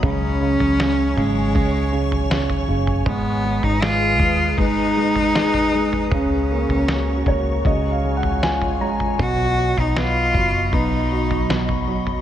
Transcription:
Already playing: F#3
0.03 C#2 C#3 C#4 C#5 G#5 C#6, kick, floor tom
0.41 C#3
0.60 C#2, floor tom
0.79 C#3, snare
1.16 G#1 C#3 G#3, floor tom
1.55 C#2 C#3, kick, floor tom
1.92 C#3
2.12 floor tom
2.30 C#3, snare
2.50 floor tom
2.68 F#1 C#3
2.87 floor tom
3.06 G#3 B3 G#4 B4 A#5 D#6, kick, floor tom
3.45 G#3
3.63 G#1 D#4, floor tom
3.82 G#3 F4, snare
4.20 D#2 G#3, kick, floor tom
4.58 G#1 G#3 D#4, kick, floor tom
4.97 G#3
5.16 floor tom
5.35 G#3, snare
5.54 floor tom
5.75 G#3
5.93 floor tom
6.11 C#2 C#3 C#4 F#4 C#5 C#6, kick, floor tom
6.51 A#3
6.69 C#2, floor tom
6.88 C#3, snare
7.26 C#2 A#3 C#5, kick, floor tom
7.65 C#2 C#3 F4 D#5 G#5, kick, floor tom
7.91 F5
8.04 G#3
8.17 F#5
8.23 floor tom
8.43 F4 G#5, snare
8.62 floor tom
8.81 A#1 G#3 A#5
9.00 floor tom
9.19 B1 B2 F#3 F#4 D#5 B5, kick, floor tom
9.58 F#3
9.78 B1 D#4, floor tom
9.96 B3 F4, snare
10.34 F#1 F#3, kick, floor tom
10.73 B1 B3 D#4, kick, floor tom
11.12 F#3
11.31 floor tom
11.50 B2, snare
11.69 floor tom
11.87 F#3
12.07 floor tom

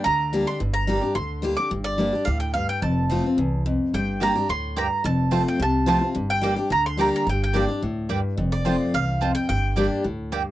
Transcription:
0.04 D2 D3 A#5
0.33 G3 A#3 D4 G4
0.47 D4 G4 C6
0.60 G1 G2
0.74 A#5
0.87 G3 A#3 D4 G4
1.01 D4 G4
1.15 D2 D3 C6
1.42 G3 A#3 D4 G4
1.57 D4 G4 D6
1.71 G1 G2
1.84 D5
1.98 G3 A#3 D4 G4
2.13 D4 G4
2.25 D2 A2 F5
2.40 G5
2.54 G2 F5
2.69 G5
2.82 F1 F2 A5
3.10 F3 A3 C4 F4
3.24 C4 F4
3.38 C2 E2
3.66 F2
3.94 G1 G2 G5
4.20 G3 A#3 D4 G4 D5 G5 A#5
4.35 D4 G4
4.49 D2 A2 C6
4.76 G2 A#3 G4 D5 G5 A#5
5.04 F1 F2 A5
5.31 F3 A3 C4 F4 C5 A5
5.48 G5
5.59 C2 C3 A5
5.86 F3 A3 C4 F4 C5 A5
6.01 C4 F4
6.15 G1 G2
6.30 G5
6.41 G3 A#3 D4 G4 D5 G5
6.56 D4 G4
6.70 D2 D3 A#5
6.86 C6
6.97 G3 A#3 D4 G4 D5 G5 A#5
7.16 A#5
7.27 G1 G2 G5
7.44 G5
7.53 G3 A#3 D4 G4 D5 G5
7.68 D4 G4
7.82 D2 A2
8.09 G2 A#3 G4 D5 G5
8.37 F1 F2
8.52 D5
8.65 F3 A3 C4 F4 C5 A5
8.94 C2 E2 F5
9.21 F2 C4 F4 C5 A5
9.35 G5
9.49 G1 G2 G5
9.76 G3 A#3 D4 G4 D5 G5
10.04 D2 A2
10.32 G2 A#3 G4 D5 G5

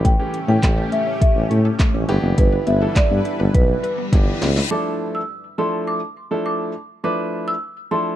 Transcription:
Already playing: A1 E3 A3 C#4 G4
0.05 A3 G5, kick, closed hi-hat
0.19 E3 A3 C#4 G4
0.34 closed hi-hat
0.48 A2 E3 A3 C#4 G4 G5
0.62 A1 C#4, kick, snare, clap, closed hi-hat
0.78 A4
0.92 A3 E5, closed hi-hat
1.07 C#4
1.21 A4 E5, kick, closed hi-hat
1.36 A1
1.50 A2 C#4, closed hi-hat
1.65 A4
1.79 A3, kick, snare, clap, closed hi-hat
1.94 A1 C#4
2.09 G1 E3 G3 B3 D4 E4 G4 B4, closed hi-hat
2.23 F#1 B3
2.38 G1 E4 B4, kick, closed hi-hat
2.52 B4
2.67 G1 B3 E5, closed hi-hat
2.81 E3 B3 D4 E4 A4
2.95 G2 B4 D5, kick, snare, clap, closed hi-hat
3.11 G2 B3
3.25 E4, closed hi-hat
3.40 G1 B4
3.54 B1 B3 B4, kick, closed hi-hat, reverse cymbal
3.83 B4, closed hi-hat
3.98 B3
4.12 G1 E3 B3 D4 E4 G4, kick, snare, closed hi-hat
4.42 C#2 B3, snare, closed hi-hat
4.56 E4, snare
4.71 F3 A3 D4 E4 A4 D6
5.15 E6
5.58 F3 A3 D4 E4 A4 C6
5.87 D6
6.31 F3 A3 D4 E4 A4
6.46 D6
7.04 F3 A3 D4 E4 B4 D6
7.48 E6
7.91 F3 A3 D4 E4 A4 C6

